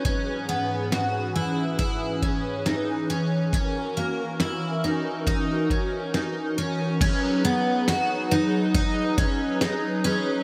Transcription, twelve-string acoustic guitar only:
X:1
M:4/4
L:1/8
Q:1/4=69
K:G#m
V:1 name="Twelve-string acoustic guitar"
C B, F E E C D C | C A, E D D C D C | C B, F D D C D C |]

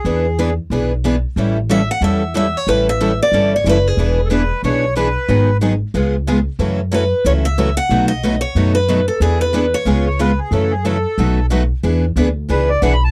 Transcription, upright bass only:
X:1
M:4/4
L:1/8
Q:"Swing" 1/4=183
K:Emix
V:1 name="Upright bass" clef=bass
E,,4 B,,,4 | A,,,4 E,,4 | A,,,4 =G,,,2 F,,,2 | E,,,4 B,,,4 |
G,,,4 C,,4 | F,,4 C,,4 | B,,,4 F,,4 | E,,4 C,,4 |
F,,4 B,,,4 | E,,2 D,,2 C,,2 B,,,2 |]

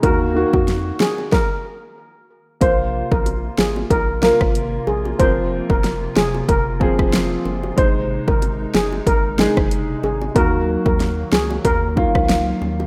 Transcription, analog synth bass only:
X:1
M:4/4
L:1/16
Q:"Swing 16ths" 1/4=93
K:Ebdor
V:1 name="Analog synth bass" clef=bass
E,,3 F,,3 z8 z2 | B,,,3 B,,,3 A,,,2 B,,,3 A,,,3 B,,,2 | F,,,3 F,,,3 F,,,2 F,,,3 F,,,3 G,,,2 | A,,,3 A,,,3 G,,,2 A,,,3 G,,,3 A,,,2 |
E,,3 E,,3 D,,2 E,,3 D,,3 E,,2 |]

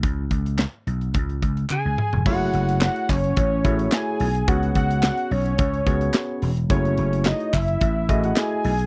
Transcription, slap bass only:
X:1
M:4/4
L:1/16
Q:1/4=108
K:F#dor
V:1 name="Slap bass" clef=bass
C,,2 C,,3 z B,,,2 C,,2 C,,2 C, C,, z E,,, | F,,,2 F,,,3 z F,,,2 A,,,2 A,,,2 z2 B,,,2 | C,,2 C,,3 z B,,,2 C,,2 C,,2 z2 E,,,2 | F,,,2 F,,,3 z F,,,2 A,,,2 A,,,2 z2 B,,,2 |]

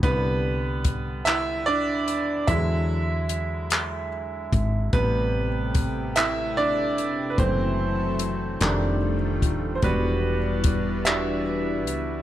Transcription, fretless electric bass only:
X:1
M:6/8
L:1/8
Q:3/8=49
K:Em
V:1 name="Fretless electric bass" clef=bass
C,,4- C,, _E,, | E,,4- E,, ^G,,, | A,,,4- A,,, =F,,, | F,,,3 =F,,,2 _E,,, |
E,,,4- E,,, ^C,, |]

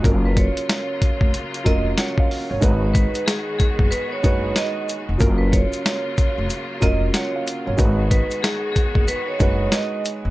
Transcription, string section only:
X:1
M:4/4
L:1/8
Q:"Swing 16ths" 1/4=93
K:G#dor
V:1 name="String section"
[C,F,A,E]8 | [D,G,B,F]8 | [C,F,A,E]8 | [D,G,B,F]8 |]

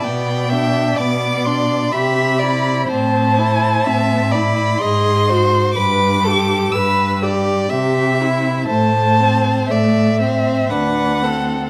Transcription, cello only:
X:1
M:3/4
L:1/8
Q:1/4=62
K:C
V:1 name="Cello" clef=bass
B,,2 B,,2 C,2 | [K:Am] A,,2 A,,2 _A,,2 | G,,2 G,,2 C,2 | A,,2 A,,2 D,,2 |]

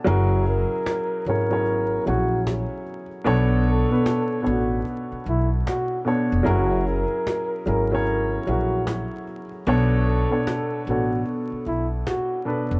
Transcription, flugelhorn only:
X:1
M:4/4
L:1/16
Q:"Swing 16ths" 1/4=75
K:Bdor
V:1 name="Flugelhorn"
F2 ^A4 A4 F2 z4 | z2 A4 F2 z2 E z F2 z2 | F2 ^A4 A4 F2 z4 | z2 A4 F2 z2 E z F2 z2 |]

